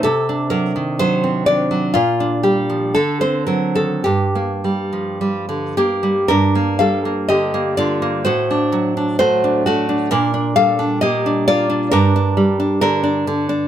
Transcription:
\new Staff \with { instrumentName = "Nylon-string guitar" } { \time 2/4 \key g \minor \tempo 4 = 63 << { a'8 bes'8 c''8 d''8 | f'8 g'8 a'16 c''16 bes'16 a'16 | g'4 r8 <bes g'>8 | <d' bes'>8 <a' f''>8 <g' ees''>8 <f' d''>8 |
<fis' c''>4 <fis' c''>8 <a fis'>8 | <d' bes'>8 <a' f''>8 <g' ees''>8 <f' d''>8 | <d' bes'>4 <d' bes'>8 r8 | } \\ { c16 d'16 fis16 ees16 fis16 c'16 d'16 fis16 | bes,16 d'16 g16 f16 d16 c'16 fis16 ees16 | g,16 bes16 g16 f16 g16 d16 bes16 g16 | g,16 bes16 g16 bes16 d16 bes16 d16 bes16 |
a,16 d'16 fis16 d'16 a16 d'8 d'16 | bes,16 d'16 g16 d'16 bes16 d'16 bes16 d'16 | g,16 d'16 g16 d'16 d16 d'16 d16 d'16 | } >> }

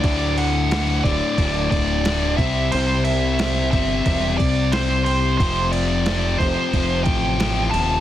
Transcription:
<<
  \new Staff \with { instrumentName = "Lead electric guitar" } { \time 4/4 \key c \lydian \tempo 4 = 90 d''8 fis''4 d''4 d''4 e''8 | c''8 e''4 e''4 d''8 c''8 c''8 | c''8 d''4 c''4 g''4 a''8 | }
  \new Staff \with { instrumentName = "Distorted electric guitar" } { \clef bass \time 4/4 \key c \lydian <d, a, d>4 <d, a, d>8 <d, a, d>8 <d, a, d>4 <d, a, d>8 <c g c'>8 | <c g c'>4 <c g c'>8 <c g c'>8 <c g c'>4 <c g c'>8 <c g c'>8 | <f, c f>4 <f, c f>8 <f, c f>8 <f, c f>4 <f, c f>8 <f, c f>8 | }
  \new Staff \with { instrumentName = "Fingered electric bass" } { \clef bass \time 4/4 \key c \lydian d,4. d,,16 r16 d,,8 d,,4 c,8 | c,4. g,,8 e,,8 c,4. | f,,4. f,,16 r16 f,,8 a,,4 ees,,8 | }
  \new DrumStaff \with { instrumentName = "Drums" } \drummode { \time 4/4 <cymc bd>8 cymc8 <cymc sn>8 <cymc bd>8 <cymc bd>8 <cymc bd>8 <cymc sn>8 <cymc bd>8 | cymc8 cymc8 <cymc sn>8 <cymc bd>8 <cymc bd>8 <cymc bd>8 <cymc sn>8 cymc8 | <cymc bd>8 cymc8 <cymc sn>8 <cymc bd>8 <cymc bd>8 <cymc bd>8 <cymc sn>8 cymc8 | }
>>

